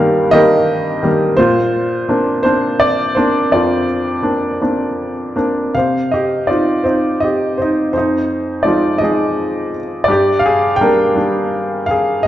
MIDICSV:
0, 0, Header, 1, 2, 480
1, 0, Start_track
1, 0, Tempo, 709220
1, 933, Time_signature, 6, 3, 24, 8
1, 2381, Tempo, 740741
1, 4781, Tempo, 720288
1, 8148, End_track
2, 0, Start_track
2, 0, Title_t, "Upright piano"
2, 0, Program_c, 0, 0
2, 0, Control_c, 0, 64, 127
2, 0, Note_on_c, 0, 43, 65
2, 0, Note_on_c, 0, 51, 48
2, 0, Note_on_c, 0, 55, 46
2, 0, Note_on_c, 0, 58, 51
2, 0, Note_on_c, 0, 67, 60
2, 0, Note_on_c, 0, 70, 65
2, 0, Note_on_c, 0, 75, 84
2, 0, Note_on_c, 0, 77, 102
2, 195, Note_off_c, 0, 70, 0
2, 205, Note_off_c, 0, 55, 0
2, 206, Note_off_c, 0, 51, 0
2, 209, Note_off_c, 0, 58, 0
2, 212, Note_off_c, 0, 75, 0
2, 212, Note_on_c, 0, 75, 101
2, 215, Note_on_c, 0, 55, 42
2, 216, Note_on_c, 0, 51, 44
2, 219, Note_on_c, 0, 58, 53
2, 222, Note_on_c, 0, 70, 61
2, 224, Note_off_c, 0, 67, 0
2, 224, Note_on_c, 0, 67, 69
2, 240, Note_off_c, 0, 77, 0
2, 679, Note_off_c, 0, 51, 0
2, 679, Note_off_c, 0, 55, 0
2, 681, Note_off_c, 0, 58, 0
2, 694, Note_on_c, 0, 51, 49
2, 701, Note_on_c, 0, 58, 55
2, 702, Note_on_c, 0, 55, 51
2, 724, Note_off_c, 0, 75, 0
2, 904, Note_off_c, 0, 43, 0
2, 906, Note_off_c, 0, 70, 0
2, 908, Note_off_c, 0, 67, 0
2, 924, Note_on_c, 0, 72, 87
2, 925, Note_off_c, 0, 51, 0
2, 928, Note_off_c, 0, 58, 0
2, 929, Note_off_c, 0, 55, 0
2, 937, Note_on_c, 0, 46, 69
2, 941, Note_on_c, 0, 65, 65
2, 942, Control_c, 0, 64, 0
2, 1054, Control_c, 0, 64, 127
2, 1411, Note_on_c, 0, 58, 52
2, 1411, Note_on_c, 0, 60, 43
2, 1416, Note_on_c, 0, 62, 54
2, 1631, Note_off_c, 0, 65, 0
2, 1634, Note_off_c, 0, 72, 0
2, 1641, Note_off_c, 0, 60, 0
2, 1643, Note_off_c, 0, 58, 0
2, 1644, Note_on_c, 0, 72, 79
2, 1647, Note_off_c, 0, 62, 0
2, 1651, Note_on_c, 0, 60, 39
2, 1653, Note_on_c, 0, 58, 45
2, 1657, Note_on_c, 0, 62, 56
2, 1875, Note_off_c, 0, 72, 0
2, 1892, Note_on_c, 0, 74, 86
2, 2120, Note_off_c, 0, 74, 0
2, 2124, Note_off_c, 0, 58, 0
2, 2124, Note_off_c, 0, 60, 0
2, 2127, Note_off_c, 0, 62, 0
2, 2131, Note_on_c, 0, 72, 65
2, 2142, Note_on_c, 0, 58, 53
2, 2144, Note_on_c, 0, 60, 45
2, 2147, Note_on_c, 0, 62, 59
2, 2355, Note_off_c, 0, 46, 0
2, 2379, Note_on_c, 0, 41, 60
2, 2383, Note_off_c, 0, 72, 0
2, 2383, Note_on_c, 0, 74, 70
2, 2393, Note_on_c, 0, 65, 54
2, 2599, Note_off_c, 0, 58, 0
2, 2600, Note_off_c, 0, 60, 0
2, 2602, Note_off_c, 0, 62, 0
2, 2839, Note_on_c, 0, 58, 41
2, 2843, Note_on_c, 0, 60, 39
2, 2844, Note_on_c, 0, 62, 48
2, 3080, Note_off_c, 0, 60, 0
2, 3083, Note_off_c, 0, 58, 0
2, 3087, Note_off_c, 0, 62, 0
2, 3090, Note_on_c, 0, 60, 37
2, 3092, Note_on_c, 0, 58, 41
2, 3097, Note_on_c, 0, 62, 46
2, 3557, Note_off_c, 0, 74, 0
2, 3562, Note_off_c, 0, 65, 0
2, 3563, Note_off_c, 0, 58, 0
2, 3566, Note_off_c, 0, 60, 0
2, 3569, Note_off_c, 0, 62, 0
2, 3573, Note_on_c, 0, 58, 47
2, 3576, Note_on_c, 0, 60, 39
2, 3578, Note_on_c, 0, 62, 47
2, 3798, Note_off_c, 0, 41, 0
2, 3813, Note_off_c, 0, 58, 0
2, 3814, Note_off_c, 0, 60, 0
2, 3816, Note_off_c, 0, 62, 0
2, 3823, Note_on_c, 0, 48, 50
2, 3824, Note_on_c, 0, 77, 65
2, 3833, Control_c, 0, 64, 0
2, 3842, Note_on_c, 0, 72, 51
2, 3959, Control_c, 0, 64, 127
2, 4059, Note_off_c, 0, 72, 0
2, 4064, Note_on_c, 0, 75, 62
2, 4073, Note_off_c, 0, 77, 0
2, 4078, Note_on_c, 0, 67, 49
2, 4295, Note_off_c, 0, 67, 0
2, 4295, Note_on_c, 0, 74, 55
2, 4301, Note_on_c, 0, 60, 34
2, 4304, Note_on_c, 0, 63, 38
2, 4312, Note_off_c, 0, 75, 0
2, 4317, Note_on_c, 0, 65, 50
2, 4527, Note_off_c, 0, 60, 0
2, 4531, Note_on_c, 0, 72, 57
2, 4533, Note_off_c, 0, 65, 0
2, 4535, Note_off_c, 0, 63, 0
2, 4537, Note_on_c, 0, 60, 37
2, 4545, Note_on_c, 0, 63, 41
2, 4546, Note_off_c, 0, 74, 0
2, 4757, Note_off_c, 0, 72, 0
2, 4770, Note_on_c, 0, 75, 66
2, 4795, Note_on_c, 0, 67, 45
2, 5004, Note_off_c, 0, 60, 0
2, 5008, Note_off_c, 0, 63, 0
2, 5013, Note_off_c, 0, 67, 0
2, 5018, Note_on_c, 0, 72, 57
2, 5024, Note_off_c, 0, 75, 0
2, 5044, Note_on_c, 0, 63, 47
2, 5236, Note_off_c, 0, 48, 0
2, 5243, Note_off_c, 0, 72, 0
2, 5252, Note_on_c, 0, 41, 51
2, 5253, Note_on_c, 0, 72, 58
2, 5258, Note_off_c, 0, 63, 0
2, 5270, Control_c, 0, 64, 0
2, 5283, Note_on_c, 0, 63, 51
2, 5400, Control_c, 0, 64, 127
2, 5717, Note_on_c, 0, 74, 65
2, 5722, Note_off_c, 0, 63, 0
2, 5727, Note_on_c, 0, 56, 37
2, 5729, Note_on_c, 0, 53, 40
2, 5732, Note_on_c, 0, 63, 47
2, 5750, Note_off_c, 0, 72, 0
2, 5753, Note_on_c, 0, 65, 54
2, 5955, Note_on_c, 0, 75, 72
2, 5966, Note_off_c, 0, 53, 0
2, 5966, Note_off_c, 0, 56, 0
2, 5967, Note_off_c, 0, 65, 0
2, 5971, Note_off_c, 0, 63, 0
2, 5972, Note_off_c, 0, 74, 0
2, 5976, Note_on_c, 0, 53, 34
2, 5976, Note_on_c, 0, 56, 34
2, 5981, Note_on_c, 0, 63, 42
2, 5992, Note_on_c, 0, 68, 50
2, 6436, Note_off_c, 0, 53, 0
2, 6436, Note_off_c, 0, 56, 0
2, 6439, Note_off_c, 0, 63, 0
2, 6473, Note_off_c, 0, 75, 0
2, 6491, Note_off_c, 0, 68, 0
2, 6657, Note_off_c, 0, 41, 0
2, 6659, Note_on_c, 0, 74, 72
2, 6686, Note_on_c, 0, 43, 59
2, 6697, Note_on_c, 0, 67, 62
2, 6698, Control_c, 0, 64, 0
2, 6832, Control_c, 0, 64, 127
2, 6895, Note_on_c, 0, 77, 82
2, 6917, Note_off_c, 0, 67, 0
2, 6923, Note_off_c, 0, 74, 0
2, 6937, Note_on_c, 0, 68, 72
2, 7140, Note_on_c, 0, 79, 87
2, 7157, Note_off_c, 0, 68, 0
2, 7160, Note_off_c, 0, 77, 0
2, 7173, Note_on_c, 0, 55, 39
2, 7173, Note_on_c, 0, 62, 46
2, 7174, Note_on_c, 0, 70, 64
2, 7176, Note_on_c, 0, 58, 41
2, 7391, Note_off_c, 0, 55, 0
2, 7398, Note_off_c, 0, 62, 0
2, 7401, Note_off_c, 0, 58, 0
2, 7401, Note_on_c, 0, 55, 37
2, 7408, Note_on_c, 0, 62, 46
2, 7411, Note_on_c, 0, 58, 33
2, 7871, Note_off_c, 0, 70, 0
2, 7874, Note_on_c, 0, 77, 72
2, 7876, Note_off_c, 0, 55, 0
2, 7880, Note_off_c, 0, 62, 0
2, 7881, Note_off_c, 0, 58, 0
2, 7903, Note_off_c, 0, 79, 0
2, 7904, Note_on_c, 0, 68, 59
2, 8112, Note_off_c, 0, 43, 0
2, 8112, Note_off_c, 0, 77, 0
2, 8118, Note_on_c, 0, 75, 73
2, 8128, Note_off_c, 0, 68, 0
2, 8148, Note_off_c, 0, 75, 0
2, 8148, End_track
0, 0, End_of_file